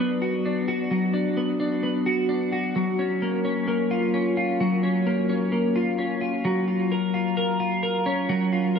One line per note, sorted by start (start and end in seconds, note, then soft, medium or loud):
0.00 0.91 F#3 medium
0.00 1.36 B3 medium
0.00 0.44 D4 soft
0.22 0.68 F#4 medium
0.46 1.12 D4 medium
0.68 2.06 F#4 medium
0.91 2.75 F#3 medium
1.14 1.59 D4 medium
1.37 1.82 B3 medium
1.60 2.28 D4 medium
1.83 2.85 B3 soft
2.06 2.52 F#4 medium
2.29 2.84 D4 medium
2.53 3.91 F#4 medium
2.76 4.60 F#3 medium
2.99 3.44 C#4 soft
3.22 3.67 A#3 medium
3.45 4.13 C#4 soft
3.68 5.06 A#3 medium
3.91 4.37 F4 medium
4.14 4.83 C#4 medium
4.37 5.75 F4 medium
4.60 6.44 F#3 medium
4.83 5.29 C#4 soft
5.07 5.52 A#3 medium
5.29 5.98 C#4 soft
5.52 8.79 A#3 medium
5.76 6.21 F4 medium
5.98 8.06 C#4 soft
6.21 6.68 F4 medium
6.45 8.29 F#3 medium
6.68 7.13 F4 medium
6.92 7.36 A#4 medium
7.14 7.59 F4 medium
7.37 7.82 A#4 medium
7.60 8.52 F4 medium
7.83 8.74 A#4 medium
8.06 8.79 C#4 medium
8.29 8.79 F#3 medium
8.53 8.79 F4 medium
8.76 8.79 A#4 medium